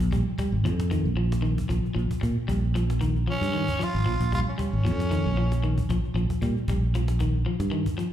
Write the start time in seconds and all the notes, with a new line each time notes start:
0.00 A#1, cajon bass
0.12 G3, cajon bass
0.27 cajon slap
0.38 G3, cajon bass
0.52 G#1, cajon slap
0.64 F2 F3, cajon slap
0.80 cajon slap
0.91 D#3, cajon bass, cajon slap
1.05 A#1, cajon slap
1.17 F3
1.32 cajon slap
1.42 D#3, cajon slap
1.58 cajon bass
1.69 A#1 F3, cajon bass, cajon slap
1.84 muted fingered electric bass stroke, cajon slap
1.95 A#1 F3, cajon slap
2.11 cajon bass
2.21 A#2, muted clean electric guitar stroke, cajon bass
2.38 cajon slap
2.48 A#1 G3, cajon bass
2.63 cajon slap
2.75 F3, cajon slap
2.90 cajon slap
3.01 D#3, cajon bass
3.16 cajon slap
3.27 F3 C#4
3.41 G2, cajon slap
3.54 D#3, cajon slap
3.68 cajon bass, cajon slap
3.79 F3, cajon slap
3.84 F4
3.95 G#1, cajon slap
4.06 A#1 F3, cajon slap
4.21 A#1, cajon bass, cajon slap
4.32 G3 F4, cajon bass
4.48 C#4, cajon slap
4.58 G3, cajon bass
4.73 G#1, cajon slap
4.85 F2 F3, cajon slap
5.00 cajon slap
5.11 D#3, cajon bass
5.25 A#1, cajon slap
5.37 F3
5.52 cajon slap
5.63 D#3, cajon slap
5.78 cajon bass
5.89 A#1 F3, cajon bass, cajon slap
6.04 cajon slap
6.14 A#1 F3, cajon slap
6.30 muted fingered electric bass stroke, cajon bass, cajon slap
6.42 A#2 G3, cajon bass
6.56 cajon slap
6.68 A#1 G3, cajon bass
6.82 cajon slap
6.95 F3, cajon slap
7.08 cajon slap
7.20 D#3, cajon bass, cajon slap
7.33 cajon slap
7.46 F3
7.60 G2, cajon slap
7.71 D#3, cajon slap
7.86 cajon bass
7.98 F3, cajon slap